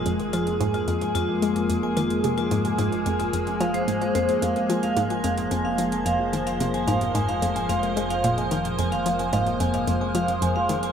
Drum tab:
HH |xxxxxxxxx-xxx-xx|xxxxxxxxxxxxxxxx|xxxxxxxxx-xxx-xx|xxxxxxxxxxxxxxxx|
CG |o-o-o-o-o-o-o-o-|o-o-o-o-o-o-o-o-|o-o-o-o-o-o-o-o-|o-o-o-o-o-o-o-o-|

HH |xxxxxxxxx-xxx-xx|
CG |o-o-o-o-o-o-o-o-|